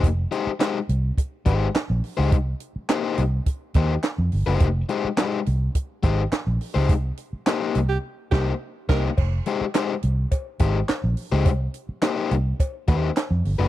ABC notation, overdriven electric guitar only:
X:1
M:4/4
L:1/16
Q:1/4=105
K:Fm
V:1 name="Overdriven electric guitar"
z2 [A,EGc] z [A,EGc] z4 z [A,EGc] z4 [A,EGc] | z4 [B,EGc] [B,EGc] z4 [B,EGc] z4 [B,EGc] | z2 [A,EGc] z [A,EGc] z4 z [A,EGc] z4 [A,EGc] | z4 [B,EGc] [B,EGc] z4 [B,EGc]2 z2 [B,EGc]2 |
z2 [A,EGc] z [A,EGc] z4 z [A,EGc] z4 [A,EGc] | z4 [B,EGc] [B,EGc] z4 [B,EGc] z4 [B,EGc] |]